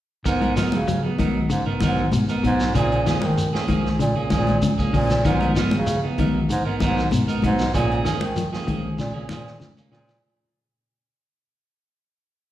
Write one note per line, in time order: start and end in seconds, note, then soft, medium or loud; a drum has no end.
0.25 0.53 G#2 medium
0.25 0.41 B3 medium
0.25 0.41 D#4 medium
0.25 0.40 A#4 medium
0.25 muted clean electric guitar stroke medium
0.25 kick medium
0.25 closed hi-hat medium
0.25 shekere medium
0.41 0.55 B3 soft
0.41 0.56 D#4 soft
0.41 0.56 A#4 medium
0.41 closed hi-hat soft
0.41 high conga medium
0.56 0.84 F3 medium
0.56 0.76 F#3 medium
0.56 0.76 B3 soft
0.56 0.76 D#4 medium
0.56 0.76 A#4 medium
0.56 snare medium
0.56 closed hi-hat soft
0.56 shekere medium
0.72 1.00 C#3 medium
0.72 closed hi-hat soft
0.72 high conga medium
0.72 shekere soft
0.88 1.15 F#3 medium
0.88 closed hi-hat medium
0.88 shekere medium
1.03 1.18 B3 soft
1.03 1.18 D#4 soft
1.03 muted clean electric guitar stroke medium
1.19 1.46 D#3 medium
1.19 1.38 F#3 medium
1.19 1.39 B3 soft
1.19 1.39 D#4 medium
1.19 1.39 A#4 medium
1.19 kick medium
1.19 closed hi-hat medium
1.19 high conga medium
1.19 shekere soft
1.50 1.65 G#2 medium
1.50 1.77 C#3 medium
1.50 closed hi-hat medium
1.50 shekere medium
1.66 1.74 G#2 soft
1.66 1.81 B3 soft
1.66 1.81 D#4 soft
1.66 1.81 A#4 medium
1.80 2.09 G#2 medium
1.80 2.08 D#3 medium
1.80 2.01 F#3 medium
1.80 2.01 B3 medium
1.80 2.01 D#4 medium
1.80 2.01 A#4 medium
1.80 kick medium
1.80 closed hi-hat soft
1.80 high conga medium
1.80 shekere medium
1.97 shekere soft
2.12 2.40 B2 medium
2.12 closed hi-hat medium
2.12 high conga medium
2.12 shekere medium
2.29 2.43 B3 soft
2.29 2.44 D#4 medium
2.29 2.44 A#4 medium
2.29 closed hi-hat soft
2.29 shekere medium
2.43 2.71 G#2 loud
2.43 2.71 B2 medium
2.43 2.63 F#3 medium
2.43 2.63 B3 medium
2.43 kick medium
2.43 closed hi-hat medium
2.43 shekere soft
2.60 snare medium
2.60 shekere medium
2.75 3.02 A#2 medium
2.75 3.02 C#3 medium
2.75 2.91 F3 medium
2.75 2.91 A#3 medium
2.75 2.91 C#4 medium
2.75 2.90 G#4 medium
2.75 kick medium
2.75 closed hi-hat medium
2.75 shekere medium
2.91 3.05 A#3 soft
2.91 3.06 C#4 soft
2.91 3.06 G#4 soft
2.91 closed hi-hat soft
3.06 3.33 D#3 medium
3.06 3.25 F3 medium
3.06 3.26 A#3 medium
3.06 3.26 C#4 medium
3.06 3.26 G#4 medium
3.06 snare medium
3.06 closed hi-hat soft
3.06 shekere medium
3.22 3.50 D#3 medium
3.22 high conga medium
3.22 shekere soft
3.38 closed hi-hat medium
3.38 shekere medium
3.53 3.67 A#3 soft
3.53 3.68 C#4 soft
3.53 3.68 G#4 soft
3.53 snare medium
3.68 3.96 D#3 medium
3.68 3.88 F3 medium
3.68 3.88 A#3 medium
3.68 3.88 C#4 medium
3.68 3.88 G#4 medium
3.68 kick medium
3.68 closed hi-hat soft
3.68 high conga medium
3.68 shekere soft
3.86 snare soft
3.99 4.14 A#2 medium
3.99 4.27 C#3 medium
3.99 closed hi-hat medium
3.99 shekere medium
4.15 4.24 A#2 soft
4.15 4.30 A#3 soft
4.15 4.30 C#4 soft
4.15 4.31 G#4 medium
4.30 4.58 A#2 medium
4.30 4.58 D#3 medium
4.30 4.50 F3 medium
4.30 4.50 A#3 medium
4.30 4.51 C#4 medium
4.30 4.51 G#4 medium
4.30 kick medium
4.30 snare soft
4.30 closed hi-hat soft
4.30 high conga medium
4.30 shekere medium
4.47 closed hi-hat soft
4.47 high conga medium
4.47 shekere soft
4.62 4.90 C#3 medium
4.62 closed hi-hat medium
4.62 high conga medium
4.62 shekere medium
4.78 4.92 A#3 soft
4.78 4.93 C#4 medium
4.78 4.93 G#4 medium
4.78 kick medium
4.78 shekere medium
4.93 5.21 A#2 loud
4.93 5.21 C#3 medium
4.93 5.13 F3 medium
4.93 5.13 A#3 medium
4.93 5.13 C#4 medium
4.93 5.13 G#4 medium
4.93 kick medium
4.93 open hi-hat medium
4.93 shekere soft
5.10 snare medium
5.10 closed hi-hat soft
5.10 shekere medium
5.24 5.52 G#2 medium
5.24 5.52 D#3 medium
5.24 5.41 F#3 medium
5.24 5.41 B3 medium
5.24 5.40 D#4 medium
5.24 5.39 A#4 medium
5.24 kick medium
5.24 closed hi-hat medium
5.24 shekere medium
5.41 5.55 B3 soft
5.41 5.56 D#4 medium
5.41 5.56 A#4 medium
5.41 closed hi-hat soft
5.41 high conga medium
5.56 5.84 F3 medium
5.56 5.75 F#3 medium
5.56 5.75 B3 medium
5.56 5.76 D#4 medium
5.56 5.76 A#4 medium
5.56 snare medium
5.56 closed hi-hat soft
5.56 shekere medium
5.71 5.99 C#3 medium
5.71 closed hi-hat soft
5.71 high conga medium
5.71 shekere soft
5.87 muted clean electric guitar stroke medium
5.87 closed hi-hat medium
5.87 shekere medium
6.04 6.17 B3 soft
6.04 6.18 D#4 soft
6.18 6.46 D#3 medium
6.18 6.38 F#3 medium
6.18 6.38 B3 medium
6.18 6.38 D#4 medium
6.18 6.38 A#4 medium
6.18 kick medium
6.18 closed hi-hat medium
6.18 high conga medium
6.18 shekere soft
6.50 6.64 G#2 medium
6.50 muted clean electric guitar stroke medium
6.50 closed hi-hat medium
6.50 shekere medium
6.65 6.73 G#2 soft
6.65 6.80 B3 soft
6.65 6.81 D#4 medium
6.65 6.80 A#4 medium
6.80 7.08 G#2 medium
6.80 7.08 D#3 medium
6.80 7.00 F#3 medium
6.80 7.00 B3 medium
6.80 7.00 D#4 medium
6.80 7.01 A#4 medium
6.80 kick medium
6.80 closed hi-hat soft
6.80 high conga medium
6.80 shekere medium
6.98 snare soft
6.98 shekere soft
7.11 7.39 B2 medium
7.11 closed hi-hat medium
7.11 high conga medium
7.11 shekere medium
7.28 7.42 B3 medium
7.28 7.43 D#4 soft
7.28 7.43 A#4 medium
7.28 closed hi-hat soft
7.28 shekere medium
7.42 7.71 G#2 loud
7.42 7.70 B2 medium
7.42 7.62 F#3 medium
7.42 7.63 B3 medium
7.42 7.63 D#4 medium
7.42 kick medium
7.42 closed hi-hat medium
7.42 high conga medium
7.42 shekere soft
7.59 snare medium
7.59 shekere medium
7.74 8.02 A#2 medium
7.74 7.90 F3 medium
7.74 7.91 A#3 medium
7.74 7.90 C#4 medium
7.74 7.90 G#4 medium
7.74 muted clean electric guitar stroke medium
7.74 kick medium
7.74 closed hi-hat medium
7.74 shekere medium
7.91 8.05 A#3 soft
7.91 8.05 C#4 soft
7.91 8.05 G#4 medium
7.91 closed hi-hat soft
8.05 8.32 D#3 medium
8.05 8.24 F3 medium
8.05 8.25 A#3 medium
8.05 8.25 C#4 medium
8.05 8.25 G#4 medium
8.05 snare medium
8.05 closed hi-hat medium
8.05 shekere medium
8.21 8.49 D#3 medium
8.21 high conga medium
8.21 shekere soft
8.36 8.64 F3 medium
8.36 closed hi-hat medium
8.36 shekere medium
8.53 8.66 A#3 medium
8.53 8.66 C#4 medium
8.53 8.67 G#4 medium
8.53 snare medium
8.67 8.95 D#3 medium
8.67 8.86 F3 soft
8.67 8.87 A#3 medium
8.67 8.87 C#4 medium
8.67 8.87 G#4 medium
8.67 kick medium
8.67 closed hi-hat medium
8.67 high conga medium
8.67 shekere soft
8.99 9.13 A#2 medium
8.99 9.26 C#3 medium
8.99 snare soft
8.99 shekere medium
9.14 9.22 A#2 soft
9.14 9.28 A#3 soft
9.14 9.29 C#4 soft
9.14 9.29 G#4 medium
9.29 9.57 A#2 medium
9.29 9.56 D#3 medium
9.29 9.49 F3 medium
9.29 9.49 A#3 medium
9.29 9.49 C#4 medium
9.29 9.49 G#4 medium
9.29 snare medium
9.29 high conga medium
9.29 shekere medium
9.47 snare soft
9.47 shekere soft
9.60 9.88 C#3 medium
9.60 snare medium
9.60 high conga medium
9.60 shekere medium
9.77 9.91 A#3 medium
9.77 9.91 C#4 medium
9.77 muted clean electric guitar stroke medium
9.77 shekere medium
9.91 10.19 A#2 loud
9.91 10.19 C#3 medium
9.91 10.11 F3 medium
9.91 10.11 A#3 medium
9.91 10.11 C#4 medium
9.91 10.11 G#4 medium
9.91 snare medium
9.91 shekere soft
10.08 snare medium
10.08 shekere medium